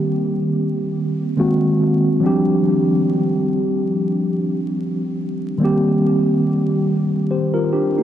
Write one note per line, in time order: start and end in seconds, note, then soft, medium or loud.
0.00 1.34 D#3 medium
0.00 1.34 G3 medium
0.00 1.35 A#3 medium
0.00 1.36 C4 medium
0.00 1.36 G4 loud
1.37 2.23 D#3 medium
1.37 2.23 G#3 medium
1.37 2.23 A#3 medium
1.37 2.22 C4 medium
1.37 2.24 F#4 medium
2.20 5.56 F3 medium
2.20 5.57 G3 medium
2.20 5.58 C4 medium
2.25 5.58 D4 medium
2.25 5.59 G4 loud
5.58 8.03 D#3 medium
5.58 8.03 G3 medium
5.58 7.27 A#3 medium
5.63 7.28 C4 medium
5.63 7.29 G4 loud
7.31 7.54 G4 medium
7.31 7.54 C5 medium
7.54 7.72 F4 medium
7.54 7.72 A#4 medium
7.73 7.96 D4 medium
7.73 7.96 G4 medium
7.98 8.03 A#3 medium
7.98 8.03 D#4 medium